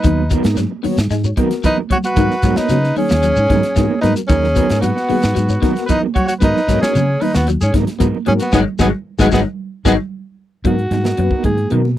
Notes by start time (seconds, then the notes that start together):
Already playing: D#4 B4
0.04 D#2 D#3 F#3 B3 D#4, muted clean electric guitar stroke, kick, closed hi-hat, shekere
0.30 F#3 B3 D#4 F#4 A#4, kick, closed hi-hat, shekere
0.43 G#2 B3, snare, closed hi-hat, high conga, shekere
0.57 F#3, muted clean electric guitar stroke, snare, closed hi-hat, high conga, shekere
0.71 muted clean electric guitar stroke
0.83 D#3 B3 F#4 C#5, muted clean electric guitar stroke, muted fingered electric bass stroke, open hi-hat, high conga, low conga, shekere
0.98 G#2, muted clean electric guitar stroke, snare, closed hi-hat, shekere
1.11 G#2 G#3, snare, closed hi-hat, shekere
1.24 F#4 C#5, muted clean electric guitar stroke, shekere
1.37 D#3 F#3 B3 D#4 F#4 A#4, kick, closed hi-hat, high conga
1.51 muted clean electric guitar stroke, snare, closed hi-hat, shekere
1.64 E3 F#3 B3 D#4 A#4 B4, kick, closed hi-hat, shekere
1.78 high conga
1.90 F#3 F#4 C#5, muted clean electric guitar stroke, kick, closed hi-hat, high conga, low conga, shekere
2.04 F#4 B4, muted clean electric guitar stroke, closed hi-hat, shekere
2.16 G#2 D#3 F#3 B3 D#4 F#4 A#4 B4, kick, closed hi-hat, low conga, shekere
2.31 snare
2.43 G#2 F#3 B3 D#4 F#4 A#4 C#5, kick, snare, closed hi-hat, shekere
2.56 B3 D#4 B4, muted fingered electric bass stroke, snare, high conga, shekere
2.69 C#3 F#3, muted clean electric guitar stroke, snare, closed hi-hat, high conga, shekere
2.84 muted clean electric guitar stroke, snare
2.96 D#3 C#4 G#4, muted clean electric guitar stroke, open hi-hat, high conga, low conga, shekere
3.09 D#2, muted clean electric guitar stroke, snare, shekere
3.23 F#3, closed hi-hat, shekere
3.36 G#2, muted clean electric guitar stroke, shekere
3.50 G#2 D#3 F#3 B3 D#4 A#4, kick, snare, closed hi-hat, high conga, low conga
3.63 muted clean electric guitar stroke, snare, closed hi-hat, shekere
3.76 G#2 E3 B3 D#4 F#4 G#4 A#4, muted clean electric guitar stroke, kick, snare, closed hi-hat, high conga, shekere
3.91 high conga
4.01 G#2 F#3 B3 D#4 F#4 A#4 B4, snare, closed hi-hat, high conga, low conga, shekere
4.16 muted clean electric guitar stroke, closed hi-hat, shekere
4.28 D#2 D#3 F#3 C#4 D#4 G#4 A#4, muted clean electric guitar stroke, kick, closed hi-hat, shekere
4.44 snare
4.55 F#3 B3 D#4 F#4 A#4 B4, kick, closed hi-hat, shekere
4.70 G#2, snare, closed hi-hat, high conga, shekere
4.81 F#3 B3 F#4, muted clean electric guitar stroke, closed hi-hat, high conga, shekere
4.96 muted clean electric guitar stroke, snare
5.09 D#3 B3 F#4 G#4, muted clean electric guitar stroke, muted fingered electric bass stroke, open hi-hat, high conga, low conga, shekere
5.22 G#2, muted clean electric guitar stroke, snare, closed hi-hat, shekere
5.35 G#2 F#3, closed hi-hat, shekere
5.49 F#4 C#5, muted clean electric guitar stroke, shekere
5.62 D#3 F#3 B3 D#4 F#4 A#4, kick, snare, closed hi-hat, high conga
5.75 snare, closed hi-hat, shekere
5.86 E3 F#3 B3 D#4 B4, kick, closed hi-hat, shekere
5.90 D#4 A#4
6.03 high conga
6.14 F#3 F#4 C#5, muted clean electric guitar stroke, kick, closed hi-hat, low conga, shekere
6.27 F#4 C#5, muted clean electric guitar stroke, closed hi-hat, shekere
6.40 G#2 D#3 F#3 B3 D#4 F#4 A#4 B4, kick, closed hi-hat, shekere
6.56 snare
6.67 G#2 F#3 B3 D#4 F#4 A#4 C#5, kick, snare, closed hi-hat, shekere
6.81 B3 C#4 G#4 A#4, muted fingered electric bass stroke, snare, high conga, shekere
6.95 C#3 F#3, muted clean electric guitar stroke, closed hi-hat, high conga, shekere
7.09 muted clean electric guitar stroke
7.21 D#3 D#4 B4, muted clean electric guitar stroke, open hi-hat, high conga, low conga, shekere
7.34 D#2 B3 F#4, muted clean electric guitar stroke, snare, shekere
7.47 F#3, closed hi-hat, shekere
7.61 G#2 C#4 G#4, muted clean electric guitar stroke, shekere
7.74 G#2 D#3 F#3 B3 D#4 A#4, kick, snare, closed hi-hat, high conga
7.87 muted clean electric guitar stroke, snare, closed hi-hat, shekere
7.99 G#2 E3 F#3 B3 D#4 F#4 A#4 B4, kick, closed hi-hat, high conga, shekere
8.15 high conga
8.26 G#2 F#3 B3 C#4 F#4 G#4 A#4, muted clean electric guitar stroke, closed hi-hat, high conga, low conga, shekere
8.39 B3 F#4, muted clean electric guitar stroke, closed hi-hat, shekere
8.52 G#1 D#3 F#3 G#3 B3 D#4 F#4 G#4, kick, snare, low conga, shekere
8.79 G#1 D#3 F#3 G#3 B3 D#4 F#4 G#4, kick, snare, low conga, shekere
9.19 G#1 D#3 F#3 G#3 B3 D#4 F#4 G#4, kick, snare, low conga, shekere
9.31 G#1 D#3 F#3 G#3 B3 D#4 F#4 G#4, kick, snare, low conga, shekere
9.85 G#1 D#3 F#3 G#3 B3 D#4 F#4 G#4, kick, snare, low conga, shekere
10.64 G#2 F#3 B3 D#4 F#4 A#4, muted clean electric guitar stroke, kick, closed hi-hat
10.77 muted clean electric guitar stroke, closed hi-hat
10.91 G#2 G#3, muted clean electric guitar stroke, snare, closed hi-hat, high conga, low conga
11.04 B3 D#4 A#4, snare, closed hi-hat
11.17 F#2 F#3 B3 F#4 B4, muted clean electric guitar stroke, closed hi-hat, high conga
11.31 B3 D#4 A#4, kick
11.44 G#2 D#3 G#4, kick, closed hi-hat, high conga, low conga
11.57 muted clean electric guitar stroke, closed hi-hat
11.69 B2 D#3 F#3 B3 D#4 F#4 A#4, closed hi-hat
11.85 high conga